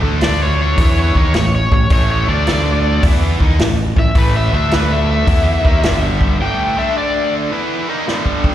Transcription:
0.02 fingered electric bass D2, overdriven electric guitar D3 A3 D4
0.21 electric slide guitar D5, snare, open hi-hat
0.43 electric slide guitar C#5
0.62 electric slide guitar C#5
0.78 fingered electric bass E2, overdriven electric guitar E3 B3 E4, electric slide guitar C#5, kick, open hi-hat
1.00 electric slide guitar C#5
1.15 fingered electric bass D#2, overdriven electric guitar D#3 A#3 D#4, electric slide guitar C#5, kick
1.34 fingered electric bass A1, overdriven electric guitar A2 E3, electric slide guitar C#5, snare, open hi-hat
1.55 electric slide guitar C#5
1.72 fingered electric bass A1, overdriven electric guitar A2 E3, electric slide guitar C#5, kick
1.90 fingered electric bass A1, overdriven electric guitar A2 E3 A3, electric slide guitar C#5, kick, open hi-hat
2.12 electric slide guitar C#5
2.27 fingered electric bass D2, overdriven electric guitar D3 A3 D4, electric slide guitar D5
2.47 electric slide guitar D5, snare, open hi-hat
3.03 fingered electric bass E2, overdriven electric guitar E3 B3 E4, kick, open hi-hat
3.40 fingered electric bass D#2, overdriven electric guitar D#3 A#3 D#4, kick
3.59 fingered electric bass A1, overdriven electric guitar A2 E3, snare, open hi-hat
3.97 fingered electric bass A1, overdriven electric guitar A2 E3, electric slide guitar E5, kick
4.15 fingered electric bass A1, overdriven electric guitar A2 E3 A3, electric slide guitar B4, kick, open hi-hat
4.36 electric slide guitar E5
4.52 fingered electric bass D2, overdriven electric guitar D3 A3 D4, electric slide guitar E5
4.71 electric slide guitar B4, snare, open hi-hat
4.92 electric slide guitar E5
5.11 electric slide guitar E5
5.27 fingered electric bass E2, overdriven electric guitar E3 B3 E4, kick, open hi-hat
5.65 fingered electric bass D#2, overdriven electric guitar D#3 A#3 D#4, kick
5.83 fingered electric bass G1, overdriven electric guitar G2 D3 G3, snare, open hi-hat
6.21 kick
6.39 overdriven electric guitar A2 E3 A3, electric slide guitar G5
6.77 overdriven electric guitar D3 A3 D4, electric slide guitar E5
6.98 electric slide guitar D5
7.52 overdriven electric guitar E3 B3 E4
7.88 overdriven electric guitar D#3 A#3 D#4
8.07 overdriven electric guitar G2 D3 G3, snare
8.26 kick
8.44 kick

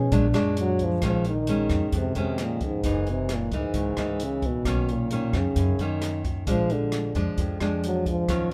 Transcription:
Already playing: nylon-string guitar B3 D#4 G#4, french horn C#4
0.12 upright bass A#1, nylon-string guitar A#2 F#3 G#3 D4, french horn D4, kick, closed hi-hat
0.34 nylon-string guitar F#3 G#3 D4, cross-stick, closed hi-hat
0.57 closed hi-hat
0.61 french horn F#3
0.79 kick, closed hi-hat
0.84 french horn F3
1.02 upright bass A#1, nylon-string guitar A#2 D#3 G#3 C#4, kick, cross-stick, closed hi-hat
1.06 french horn F3
1.25 closed hi-hat
1.29 french horn D#3
1.47 nylon-string guitar D#3 G#3 C#4, closed hi-hat
1.70 upright bass F2, kick, cross-stick, closed hi-hat
1.92 upright bass F2, nylon-string guitar F2, kick, closed hi-hat
1.97 french horn C3
2.15 upright bass F2, french horn C3, nylon-string guitar D#3 G#3 C#4, closed hi-hat
2.38 cross-stick, closed hi-hat
2.42 french horn A#2
2.61 kick, closed hi-hat
2.65 french horn G#2
2.83 upright bass F#1, nylon-string guitar F#2 E3 A#3 D#4, kick, closed hi-hat
3.07 french horn C3, closed hi-hat
3.29 cross-stick, closed hi-hat
3.34 french horn A#2
3.51 upright bass C#2, nylon-string guitar E3 A#3 D#4, kick, closed hi-hat
3.56 french horn G#2
3.74 upright bass C#2, nylon-string guitar C#3, kick, closed hi-hat
3.97 upright bass C#2, nylon-string guitar E3 A#3 D#4, cross-stick, closed hi-hat
4.20 closed hi-hat
4.24 french horn C#3
4.42 kick, closed hi-hat
4.46 french horn B2
4.65 upright bass B1, nylon-string guitar D#3 A#3 C#4, kick, cross-stick, closed hi-hat
4.89 french horn A#2, closed hi-hat
5.11 nylon-string guitar D#3 A#3 C#4, closed hi-hat
5.33 upright bass F#2, french horn C#3, kick, cross-stick, closed hi-hat
5.56 upright bass F#2, nylon-string guitar F#2, kick, closed hi-hat
5.79 upright bass F#2, nylon-string guitar D#3 A#3 C#4, french horn D#3, closed hi-hat
6.02 cross-stick, closed hi-hat
6.24 kick, closed hi-hat
6.47 upright bass A#1, nylon-string guitar A#2 F3 G#3 D4, french horn F3, kick, closed hi-hat
6.70 french horn D3, closed hi-hat
6.92 cross-stick, closed hi-hat
7.15 upright bass F2, nylon-string guitar F3 G#3 D4, kick, closed hi-hat
7.38 upright bass F2, nylon-string guitar F2, kick, closed hi-hat
7.60 upright bass F2, nylon-string guitar F3 G#3 D4, cross-stick, closed hi-hat
7.84 french horn F#3, closed hi-hat
8.06 french horn F3, kick, closed hi-hat
8.28 upright bass D#2, nylon-string guitar D#3 F#3 C#4 F4, kick, cross-stick, closed hi-hat

